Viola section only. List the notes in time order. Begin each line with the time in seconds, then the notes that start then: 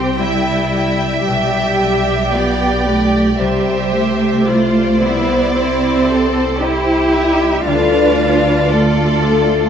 Already playing: G4
0.20 E4
1.26 G4
3.39 G4
4.47 F4
5.02 E4
5.56 E4
6.09 A4
6.62 G4
7.67 F4